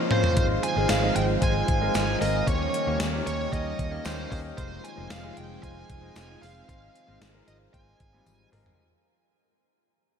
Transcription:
Already playing: C#3 F3 A#3 C4 C#4 F4 G4 A#4 C5 D#5
0.10 A#3 C4 C#4 F4 C5, mid tom
0.24 floor tom
0.36 G#1 D#3 G#3 C4 D#4 F4 C5, kick, closed hi-hat
0.63 G#5, closed hi-hat
0.76 G#1 G#3 C4 D#4 F4 G#4
0.89 G#1 F5, snare, closed hi-hat, tambourine
1.02 G#3 C4 D#4 F4 D#5
1.16 G#1 G5, closed hi-hat
1.41 G#1 G#3 C4 D#4 F4 C5 G#5, kick, closed hi-hat
1.68 G#1, kick, closed hi-hat
1.81 G#3 C4 D#4 F4 A#4
1.94 G#1, snare, closed hi-hat, tambourine
2.20 G#1 G#3 C4 D#4 F4 A#4 D#5, open hi-hat
2.47 D#2 G3 A#3 C#4 D#4 G4 C#5, kick, closed hi-hat
2.74 closed hi-hat
2.86 D#2 A#3 C#4 D#4 G4 C#5
3.00 D#2, snare, closed hi-hat, tambourine
3.12 A#3 C#4 D#4 G4 C#5
3.27 D#2 C#5, closed hi-hat
3.52 D#2 A#3 C#4 D#4 G4 C#5 D#5, kick, closed hi-hat
3.79 D#2, kick, closed hi-hat
3.91 A#3 C#4 D#4 G4 D#5
4.05 D#2 C5, snare, closed hi-hat, tambourine
4.30 D#2 A#3 C#4 D#4 G4 C5 D#5, kick, open hi-hat
4.57 F1 F3 G#3 C4 D#4 F4 C5, kick, closed hi-hat
4.84 G#5, closed hi-hat
4.97 F1 G#3 C4 D#4 F4 C5
5.10 F5, snare, closed hi-hat, tambourine
5.23 G#3 C4 D#4 F4 G#4
5.37 F1 G5, closed hi-hat
5.62 F1 G#3 C4 D#4 F4 C5 G#5, kick, closed hi-hat
5.90 F1, kick, closed hi-hat
6.02 G#3 C4 D#4 F4 D#5
6.16 F1, snare, closed hi-hat, tambourine
6.42 F1 G#3 C4 D#4 F4 C5 F5, open hi-hat
6.68 G#1 F3 G#3 C4 D#4 F4 C5 F5, kick, closed hi-hat
6.96 closed hi-hat
7.07 G#1 G#3 C4 D#4 F4 C5
7.21 G#1, snare, closed hi-hat, tambourine
7.33 G#3 C4 D#4 F4 A#4
7.48 G#1 D#5, closed hi-hat
7.73 G#1 G#3 C4 D#4 F4 C5 G#5, kick, closed hi-hat
8.00 G#1, kick, closed hi-hat
8.13 G3 G#3 C4 D#4 F4
8.26 G#1, closed hi-hat, high tom, tambourine
8.52 G#1 G#3 C4 D#4 F4 A#4, mid tom, open hi-hat
8.66 floor tom

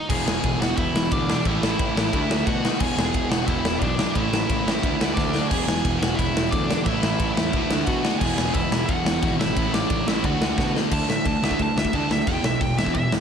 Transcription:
Already playing: D#5
0.09 E1 E2 B2 E3 G#4 G#5, kick, crash
0.26 E1 G#4 G#5, snare
0.44 E1, kick, ride
0.60 E1 E2 B2 E3 F#4 F#5, snare
0.77 E1 E4 E5, kick, ride
0.95 E1, snare
1.12 D2 E2 B2 E3 D4 D5, kick, ride
1.28 E2 B2 E3, snare
1.45 A1 A2 E3 A3 E4 E5, kick, ride
1.62 A1, snare
1.79 A1, kick, ride
1.96 A1 A2 E3 A3, snare
2.13 D2 D3 A3 D4, kick, ride
2.30 D2, snare
2.46 B2 F#4 F#5, kick, ride
2.64 D3 A3 D4, snare
2.80 E1 E2 B2 E3 G#4 G#5, kick, crash
2.96 E1 G#4 G#5, snare
3.14 E1, kick, ride
3.29 E1 B2 E3 F#4 F#5, snare
3.34 E2
3.46 E1 E4 E5, kick, ride
3.64 E1, snare
3.79 B1 E2 D4 D5, kick, ride
3.83 B2 E3
3.98 E2 B2 E3, snare
4.12 A1 A2 E3 E4 E5, kick, ride
4.17 A3
4.33 A1, snare
4.50 A1, kick, ride
4.66 A1 A2 E3 A3, snare
4.83 D2 D3 A3 D4, kick, ride
5.01 D2, snare
5.14 D2 D4 D5, kick, snare
5.34 D3 A3 D4, snare
5.48 E1 E2 G#4 G#5, kick, crash
5.52 B2 E3
5.66 E1 G#4 G#5, snare
5.85 E1, kick, ride
5.99 E1 E3 F#4 F#5, snare
6.04 E2 B2
6.16 E1 E4 E5, kick, ride
6.36 E1, snare
6.50 D2 E2 B2 D4 D5, kick, ride
6.55 E3
6.68 E2 B2 E3, snare
6.85 A1 A2 E3 A3 E4 E5, kick, ride
7.03 A1, snare
7.20 A1, kick, ride
7.37 E2 A2 E3 A3, snare
7.53 D2 D3 A3 D4, kick, ride
7.70 D2, snare
7.85 B2 F#4 F#5, kick, ride
8.05 D3 A3 D4, snare
8.19 E1 E2 B2 G#4 G#5, kick, crash
8.24 E3
8.37 E1 G#4 G#5, snare
8.53 E1 E4 E5, kick, ride
8.72 E1 E2 B2 E3, snare
8.86 E1 F#4 F#5, kick, ride
9.06 E1, snare
9.23 G#1 E2 B2 E3, kick, ride
9.39 B2 E3 E4 E5, snare
9.43 E2
9.56 A1 A2 E3 A3, kick, ride
9.73 A1 D4 D5, snare
9.90 A1, kick, ride
10.06 A1 A2 E3 A3 E4 E5, snare
10.24 D2 D3 A3 D4 F#4 F#5, kick, ride
10.41 D2, snare
10.58 B2, kick, snare
10.75 D3 A3 D4, snare
10.91 D2 D3 A3 D4 A5, kick, crash
11.08 A2 D3 A3 E5, snare
11.25 D2 D3 A3 A5, kick, crash
11.42 D2 D3 A3 D4 E5, snare
11.51 kick
11.59 D2 D3 A3 A5, kick, crash
11.76 D2 D3 A3 E5, snare
11.85 kick
11.93 D2 D3 A3 D4 A5, kick, crash
12.10 D2 D3 A3 E5, snare
12.27 E1 E2 B2 E3 G5, kick, crash
12.44 B1 E2 B2 E5, snare
12.61 E1 E2 B2 G5, kick, crash
12.78 E1 E2 B2 E3 E5, snare
12.86 kick
12.94 E1 E2 B2 E5, kick, crash
13.12 E1 E2 B2, snare

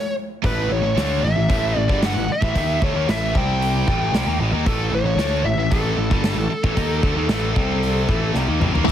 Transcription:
Already playing: C#5
0.42 A1 A2 E3 A3 B4, kick, open hi-hat
0.69 A1 A2 E3 C#5
0.82 A1 A2 E3
0.95 D2 D3 A3 D4, snare, open hi-hat
1.22 A1 A2 E3 E5
1.36 A1 A2 E3
1.49 A1 A2 E3 A3, kick, open hi-hat
1.75 A1 A2 E3
1.79 D5
1.88 G1 G2 D3 G3, kick
2.03 F#5, snare, open hi-hat
2.14 A1 A2 E3
2.28 E5, muted distorted electric guitar stroke, muted picked electric bass stroke
2.41 A1 A2 E3, kick
2.53 D#2 D#3 A#3 D#4, kick, open hi-hat
2.80 D2 D3 A3, kick
2.84 C#5
2.94 D#2 D#3 A#3
3.06 A1 A2 E3 A3, snare, open hi-hat
3.11 E5
3.35 C2 C3 G3 C4 G5, kick
3.62 open hi-hat
3.87 A1 A2 E3 A3, kick
4.12 C2 C3 G3, snare, open hi-hat
4.25 D#2 D#3 A#3
4.38 A1 A2 E3
4.52 D#2 D#3 A#3
4.66 A1 A2 E3 A3 A4, kick, open hi-hat
4.91 A1 A2 E3 C#5
5.04 A1 A2 E3
5.15 D2 D3, snare, open hi-hat
5.20 A3 D4
5.43 A1 A2 E3 E5
5.57 A1 A2 E3 E5
5.71 A1 A2 E3 A3 A4, kick, open hi-hat
5.97 A1 A2 E3
6.11 G1 G2 D3 G3, kick
6.24 snare, open hi-hat
6.34 A1 A2
6.38 E3
6.49 muted picked electric bass stroke, muted distorted electric guitar stroke
6.64 A1 A2 E3, kick
6.76 D#2 D#3 A#3 D#4, kick, open hi-hat
7.02 D2 D3 A3, kick
7.15 D#2 D#3 A#3
7.28 A1 A2 E3 A3, snare, open hi-hat
7.55 C2 C3 G3 C4, kick
7.83 open hi-hat
8.08 A1 A2 E3 A3, kick
8.34 C2 C3 G3, snare
8.47 D#2 D#3 A#3
8.60 A1 A2 E3, mid tom
8.73 D#2 D#3 A#3, floor tom
8.85 A1 A2 E3 A3, kick

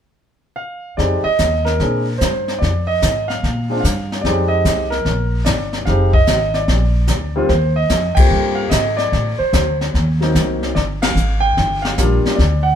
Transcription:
0.56 F5
0.97 F2 G#3 C4 D#4 G4 D5, brush sweep, kick, snare
1.24 D#5, muted upright bass stroke
1.39 D#2, kick, snare, hi-hat pedal
1.65 A#4, snare
1.80 A#2 G#3 C4 D4 G#4, brush sweep, kick, snare
2.18 G2 C5, kick, snare, hi-hat pedal
2.48 snare
2.59 F2 D5, brush sweep, kick, snare
2.87 D#5
3.02 G#2, kick, snare, hi-hat pedal
3.28 F5, snare
3.43 A#2, brush sweep, kick, snare
3.70 G#3 C4 D4 F4
3.80 G2 F5, kick
3.84 snare, hi-hat pedal
4.12 snare
4.21 F2 G#3 C4 D5, brush sweep, kick, snare
4.26 D#4 G4
4.48 D#5
4.65 C2, kick, snare, hi-hat pedal
4.90 A#4, snare
5.05 A#1, brush sweep, kick, snare
5.45 G1 D5, kick, snare, hi-hat pedal
5.73 snare
5.85 F1 G#3 C4 D#4 G4 F5, brush sweep, kick, snare
6.13 D#5, kick
6.27 G#1, kick, snare, hi-hat pedal
6.54 D5, snare
6.68 A#1, brush sweep, kick, snare
7.07 D2, kick, snare, hi-hat pedal
7.36 D#2 G3 A#3 C4 F4
7.49 D#2 C5, brush sweep, kick, snare
7.76 D#5
7.89 F2, kick, snare, hi-hat pedal
8.15 G3 A#3 C4 G5, muted upright bass stroke, kick, ride
8.20 F4
8.30 G2, brush sweep
8.55 F5
8.69 G#2 D#5, kick, snare, hi-hat pedal
8.97 D5, snare
9.12 A2, brush sweep, kick, snare
9.38 C5, muted upright bass stroke
9.53 D2, kick, snare, hi-hat pedal
9.81 snare
9.94 D#2, brush sweep, kick, snare
10.21 F#3 A#3 C4 D#4, snare
10.35 C2, kick, snare, hi-hat pedal
10.63 snare
10.75 G1 D5, brush sweep, kick, snare
11.02 F5, snare, ride
11.15 G#1, hi-hat pedal
11.40 G5
11.57 G1, brush sweep, kick, snare
11.82 F5, snare
11.98 A#1 G3 A#3 D4 F4, kick, snare, hi-hat pedal
12.25 muted upright bass stroke, snare
12.35 D2 D5, brush sweep, kick, snare
12.63 F#5

